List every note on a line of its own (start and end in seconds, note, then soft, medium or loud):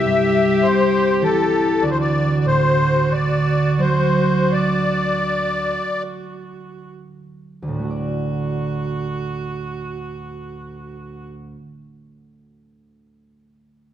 0.00 1.87 C2 soft
0.00 1.84 G4 medium
0.00 0.67 E5 medium
0.06 0.68 G2 soft
0.63 1.87 C3 soft
0.63 1.23 C5 medium
1.21 1.87 E3 soft
1.21 1.84 A4 medium
1.82 5.72 D2 soft
1.82 6.90 F#4 medium
1.82 1.90 D5 medium
1.91 1.98 C5 soft
2.00 2.38 D5 medium
2.40 2.46 D5 soft
2.45 3.15 A2 soft
2.45 3.13 C5 medium
3.09 6.99 D3 soft
3.09 3.81 D5 medium
3.78 7.68 F#3 soft
3.78 4.53 C5 medium
4.52 6.03 D5 medium
7.62 11.52 D2 soft
7.68 11.58 A2 soft
7.74 11.64 D3 soft
7.74 11.26 F#4 soft
7.79 11.31 A3 soft
7.85 11.36 F#4 soft
7.90 11.42 D5 soft